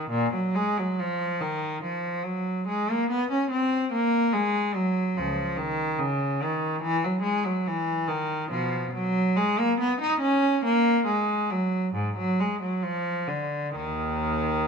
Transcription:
cello
0.10 A#2
0.33 F#3
0.55 G#3
0.78 F#3
0.99 F3
1.41 D#3
1.83 F3
2.23 F#3
2.67 G#3
2.91 A#3
3.10 B3
3.31 C#4
3.50 C4
3.93 A#3
4.33 G#3
4.74 F#3
5.17 C#2 F3
5.57 D#3
5.99 C#3
6.42 D#3
6.82 E3
7.04 F#3
7.22 G#3
7.45 F#3
7.67 E3
8.08 D#3
8.50 B2 F3
8.93 F#3
9.36 G#3
9.59 A#3
9.80 B3
10.01 D#4
10.20 C#4
10.64 A#3
11.06 G#3
11.50 F#3
11.94 G#2
12.17 F#3
12.40 G#3
12.62 F#3
12.83 F3
13.28 D3
13.75 D#2 D#3

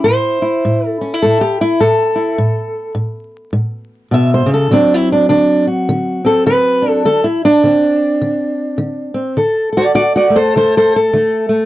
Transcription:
steel-string acoustic guitar
Already playing: E4
0.04 A2 C5
0.42 E4
0.65 A2
0.89 A4
1.01 C#4
1.14 E4
1.22 A2 A4
1.41 G4
1.61 E4
1.80 A2 A4
2.16 E4
2.38 A2
2.95 A2
3.53 A2
4.11 B2 E5
4.34 C5
4.46 C#3
4.54 A4
4.71 D3 F#3 C4 D4
4.94 E4
5.12 D4
5.29 D3 D4
5.67 F#4
5.89 D3
6.25 C4 A4
6.46 D3 B4
6.82 D4
6.90 A4
7.05 D3 A4
7.24 E4
7.45 D4
7.64 D3 C4
8.21 D3
8.78 D3
9.14 C4
9.37 D3 A4
9.73 A4
9.77 F#4 D5
9.95 D3 F#4 D5
10.16 F#4 D5
10.30 A3
10.36 A4 C5
10.56 D3 A4 C5
10.77 A4 C5
10.96 A4
11.13 D3 A3
11.49 A3

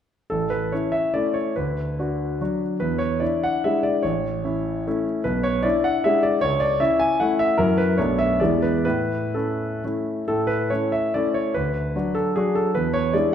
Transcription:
grand piano
0.30 A1 A4
0.50 B4
0.72 C#4 E4 C#5
0.92 E5
1.14 A3 C#4 E4 D5
1.34 C#5
1.56 D2 B4
1.99 D4 F#4
2.41 F#3 D4 F#4
2.80 E2 B4
2.98 C#5
3.20 D4 E4 D5
3.44 F#5
3.64 G#3 D4 E4 E5
3.83 D5
4.03 A1 C#5
4.45 C#4 E4
4.87 A3 C#4 E4
5.24 B1 B4
5.43 C#5
5.63 D4 E4 D5
5.84 F#5
6.04 G#3 D4 E4 E5
6.23 D5
6.41 C#2 C#5
6.60 D5
6.80 C#4 E4 E5
6.99 G#5
7.20 A3 C#4 E4 F#5
7.39 E5
7.58 F#2 F#3 C#4 E4 A#4
7.78 B4
7.98 B1 A3 B3 D4 C#5
8.19 E5
8.40 E2 G#3 B3 E4 D5
8.62 B4
8.85 A2 B4
9.34 C#4 E4 A4
9.84 A3 C#4 E4
10.28 A2 A4
10.47 B4
10.70 A3 C#4 E4 C#5
10.92 E5
11.14 A3 C#4 E4 D5
11.34 C#5
11.54 D2 B4
11.95 F#3 D4 F#4
12.15 A4
12.36 F#3 D4 F#4 G#4
12.55 A4
12.75 E2 B4
12.93 C#5
13.13 G#3 D4 E4 D5

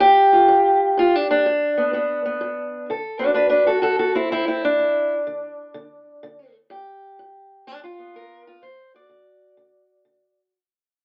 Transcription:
steel-string acoustic guitar
Already playing: F4
0.00 G2 G4
0.33 F4
0.48 G2
0.97 G2 F4
1.15 D4
1.31 D4
1.46 G2
1.78 B3
1.93 G2 B3
2.26 B3
2.41 G2
2.90 D3 A4
3.19 D4 F#4 B4
3.34 D3 D4 B4
3.49 D4 B4
3.66 F#4 A4
3.82 D3 F#4 A4
3.99 F#4 A4
4.15 C4 E4
4.31 D3 C4 E4
4.48 C4 E4
4.65 D4
4.79 D3
5.27 D3
5.74 D3
6.23 D3
6.70 G2 G4
7.19 G2
7.67 G2 D4
7.84 F4
7.99 B3
8.14 G2 A#4
8.47 F4
8.62 D3 C5
8.94 F#4 D5
9.09 D3
9.57 D3
10.05 D3

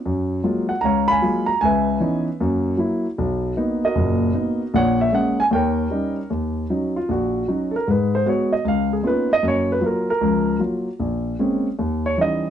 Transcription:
grand piano
0.06 F#2
0.43 F#3 G#3 A#3 F4
0.69 F#5
0.81 C#2 C#5 F5 A#5
1.08 F5 G#5 B5
1.22 F#3 G#3 A#3 F4
1.46 A#5
1.61 C#2 B4 E5 G#5
2.00 E3 B3 C#4 D#4
2.40 F#2 A#3
2.77 F#3 A#3 E4
3.18 B1
3.57 A#3 B3 D#4
3.85 F#4 A#4 D#5
3.95 F#1 A#2
4.34 A#3 B3 D#4
4.74 A#1 A#2 C#5 F#5
5.01 E5
5.12 G#3 A#3 C#4 F#5
5.40 G#5
5.51 D#2 A#4 C#5 G5
5.91 G3 C#4 D#4
6.30 D#2
6.70 F#3 C#4 D#4
6.96 F4
7.09 A#1 F#4
7.48 F#3 C#4 D#4
7.76 A#4
7.87 G#2 G#3 B4
8.15 C5
8.26 G#3 B3 F#4 C#5
8.53 D#5
8.65 C#2 F5
8.93 G#4
9.03 A#3 B3 C#4 D#4 F4 B4
9.33 D#5
9.43 F#2 A#3
9.48 C#5
9.72 B4
9.81 F#3 A#3 F4
9.86 A#4
10.10 A#4
10.21 C#2 F3
10.60 F#3 A#3 F4
11.00 A#1
11.39 G#3 A#3 C4 C#4
11.79 D#2
12.06 C#5
12.18 E3 G3 C#4 D#4 D#5

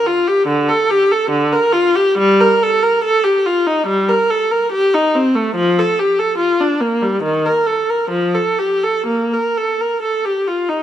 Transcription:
viola
0.06 F4
0.27 G4
0.47 D3
0.68 A4
0.90 G4
1.11 A4
1.30 D3
1.52 A#4
1.73 F4
1.95 G4
2.18 G3
2.40 A#4
2.62 A4
2.83 A#4
3.04 A4
3.23 G4
3.46 F4
3.66 D#4
3.87 G3
4.08 A#4
4.30 A4
4.51 A#4
4.72 G4
4.93 D#4
5.14 C4
5.35 A3
5.55 F3
5.79 A4
5.99 G4
6.19 A4
6.38 F4
6.60 D4
6.80 A#3
7.02 G3
7.23 D#3
7.46 A#4
7.66 A4
7.90 A#4
8.10 F3
8.34 A4
8.59 G4
8.83 A4
9.07 A#3
9.33 A#4
9.57 A4
9.80 A#4
10.02 A4
10.25 G4
10.48 F4
10.69 D#4

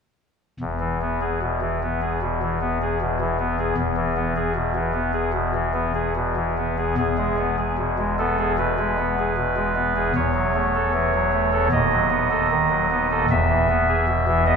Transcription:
pipe organ
0.60 E1 E2
0.80 E3
1.02 B3
1.21 G#4
1.42 B2
1.61 E3
1.83 B3
2.02 G#4
2.22 B2
2.42 E3
2.61 B3
2.82 G#4
3.01 B2
3.20 E3
3.39 B3
3.59 G#4
3.78 E1 E2
3.97 E3
4.17 B3
4.36 G#4
4.55 B2
4.75 E3
4.94 B3
5.13 G#4
5.34 B2
5.55 E3
5.74 B3
5.95 G#4
6.16 B2
6.36 E3
6.58 B3
6.78 G#4
6.98 E1 E2 G#4
7.18 G#3
7.38 B3
7.58 G#4
7.78 B2
7.98 G#3
8.19 B3 A4
8.39 G#4
8.58 B2 B4
8.79 G#3
8.98 B3
9.19 G#4
9.37 B2
9.57 G#3
9.76 B3
9.96 G#4
10.15 E1 E2 C#5
10.35 F#3
10.55 A3
10.75 A4
10.94 E3
11.14 F#3
11.33 A3
11.53 A4
11.72 D#1 D#2 D#5
11.92 F#3
12.11 B3
12.30 A4
12.51 D#3
12.70 F#3
12.91 B3
13.11 A4
13.30 E1 E2 E5
13.50 E3
13.69 B3
13.89 G#4
14.08 B2
14.28 E3
14.46 B3 D#5

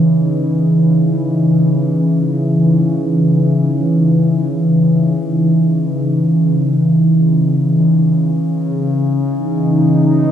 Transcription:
ambient pad
Already playing: C#3 E3 D#4 B4
7.82 C#3
8.60 E3
9.12 D#4
9.76 B4

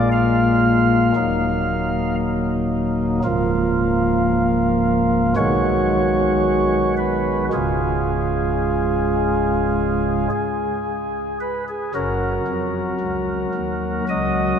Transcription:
pipe organ
Already playing: A#1 A#2 G#3 A#3 F4
0.12 F5
1.16 D#1 D#2 F#3 A#3 D#4
3.24 C#1 C#2 F3 A#3 F4
5.36 B1 B2 D#3 G#3 F#4 C#5
6.97 B4
7.53 C#1 C#2 C#3 G#3 F4 G#4
10.31 G#4
11.41 B4
11.69 G#4
11.95 F#1 F#2 F#3 F#4 A#4
12.48 F2
13.00 C#2
13.55 D#2
14.09 C#2 D#5

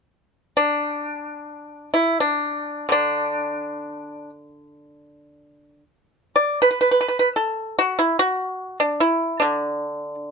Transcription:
pipa
0.57 D4
1.94 E4
2.20 D4
2.89 D3 D4
6.36 D5
6.62 B4
6.71 B4
6.81 B4
6.91 B4
7.01 B4
7.08 B4
7.19 B4
7.36 A4
7.79 F#4
7.99 E4
8.19 F#4
8.80 D4
9.00 E4
9.40 D3 D4

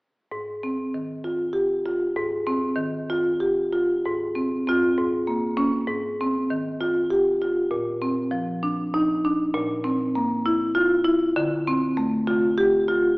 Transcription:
marimba
0.32 G#2
0.63 C4
0.94 D#3
1.24 F4
1.53 G4
1.86 F4
2.16 G#2
2.47 C4
2.76 D#3
3.10 F4
3.40 G4
3.73 F4
4.05 G#2
4.35 C4
4.67 C4 F4
4.98 G#2
5.27 A#3
5.57 A#3 C#4
5.88 G#2
6.21 C4
6.50 D#3
6.81 F4
7.10 G4
7.42 F4
7.71 A#2
8.02 C4
8.31 F3
8.63 D4
8.94 D#4
9.25 D4
9.54 A#2
9.84 C4
10.15 A#3
10.46 E4
10.75 F4
11.05 E4
11.36 D3
11.67 C4
11.97 A3
12.27 F4
12.58 G4
12.88 F4

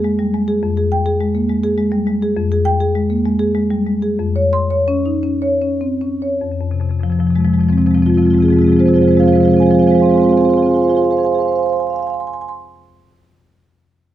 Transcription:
marimba
Already playing: F2 G#4
0.04 G#3
0.19 G3
0.34 G#3
0.48 G#4
0.63 F2
0.77 G#4
0.92 G5
1.06 G#4
1.21 G#3
1.35 A#3
1.49 G#3
1.63 G#4
1.78 G#3
1.92 G3
2.07 G#3
2.22 G#4
2.37 F2
2.52 G#4
2.65 G5
2.80 G#4
2.95 G#3
3.10 A#3
3.26 G#3
3.39 G#4
3.55 G#3
3.70 G3
3.86 G#3
4.02 G#4
4.19 F2
4.36 C#5
4.53 C6
4.70 C#5
4.88 C#4
5.06 D#4
5.23 C#4
5.42 C#5
5.62 C#4
5.81 C4
6.01 C#4
6.22 C#5
6.41 F2
6.51 F2
6.61 F2
6.71 F2 C3
6.80 F2 C3
6.89 F2 C3
6.99 F2 C3
7.03 F3
7.09 F2 C3 F3
7.19 F2 C3 F3
7.27 F2 C3 F3
7.35 F2 F3 G#3
7.41 C3
7.45 F2 F3 G#3
7.49 C3 F3
7.54 F2 G#3
7.60 C3 F3 G#3
7.67 F2 C3 F3 C4
7.73 G#3
7.77 F2 C3 F3 C4
7.82 G#3
7.86 F2 C3 F3 C4
7.91 G#3 C4
7.95 F2 C3 F3
7.99 F3 G#3 C4
8.06 F2 C3 F3 G#3 C4 F4
8.14 C3 F3 G#3 C4 F4
8.19 F2 F4
8.25 F2 C3 F3 G#3 C4
8.30 G#3 C4 F4
8.35 F2 F3 F4
8.39 C3 F3 C4 G#4
8.43 F2 G#3 F4
8.48 C3 F3 C4 G#4
8.53 F2 G#3 C4 F4
8.58 C3 F3 G#3 F4 G#4
8.64 F2 C3 F3 C4 G#4
8.70 G#3 C4 F4 G#4
8.76 F2 C3 F3 G#3 C4 F4 C5
8.81 G#4
8.86 F2 C3 F3 G#3 C4 F4 G#4 C5
8.94 F2 F3 G#3 C4 F4 G#4 C5
8.98 C3 F3 C4 C5
9.03 F2 F4 G#4
9.07 C3 F3 G#3 C4 C5
9.11 C4 F4 G#4 C5
9.16 F2 C3 G#3 G#4 F5
9.20 F3 C4 F4 C5
9.26 F2 C3 F3 G#3 F4 G#4 C5 F5
9.32 G#3 C4 F4 C5 F5
9.36 C3 F3 G#4 F5
9.40 G#3 C4 G#4 C5
9.45 C3 F3 C4 F4 F5
9.49 G#3 F4 G#4 C5 F5
9.54 F3 C4 C5
9.58 C3 F3 G#3 F4 G#4 F5 G#5
9.62 C4 C5 F5
9.67 C4 G#4 C5 G#5
9.71 F3 G#3 F4 G#4 C5 F5 G#5
9.79 F3 G#3 C4 F4 G#4 C5 F5 G#5
9.86 F3 C4 F4 G#4 C5 F5 G#5
9.91 F3 G#3 C4 F4 C5 F5 G#5
9.98 G#3 G#4 F5 G#5 C6
10.03 C4 F4 G#4 C5 F5
10.07 G#3 F4 C5 G#5 C6
10.11 C4 G#4 F5 G#5
10.16 G#3 F4 C5 F5 C6
10.20 C4 G#4 C5 G#5 C6
10.24 G#3 F4 F5 G#5
10.29 C4 F4 G#4 C5 F5 C6
10.34 C4 G#4 C5 F5 G#5 C6
10.41 F4 C5 F5 G#5 C6
10.45 C4 G#4 G#5
10.49 F4 G#4 C5 F5 C6
10.54 C4 F4 C5 F5 G#5 C6
10.59 C4 G#4 G#5
10.64 F4 G#4 C5 F5 C6
10.69 C5 F5 G#5 C6
10.73 F4 G#4 F5 G#5 C6
10.78 F4 G#4 C5 G#5
10.83 C5 F5 C6
10.88 F4 G#4 C5 F5 G#5 C6
10.95 F4 G#4 C5 F5 G#5 C6
11.02 G#4 C5 F5 G#5 C6
11.10 G#4 C5 F5 G#5 C6
11.17 G#4 C5 F5 G#5 C6
11.23 G#4 C5 F5 G#5 C6
11.30 C5 F5 G#5 C6
11.35 G#4 F5 G#5 C6
11.40 C5 F5
11.45 C5 G#5 C6
11.49 F5 G#5 C6
11.55 C5 F5 G#5 C6
11.63 C5 F5 G#5 C6
11.69 C5 F5 G#5 C6
11.76 F5 G#5 C6
11.83 F5
11.87 F5 G#5 C6
11.93 F5 G#5 C6
11.99 F5 G#5 C6
12.06 F5 G#5 C6
12.13 G#5 C6
12.20 G#5 C6
12.27 G#5 C6
12.33 G#5 C6
12.41 G#5 C6
12.48 G#5 C6

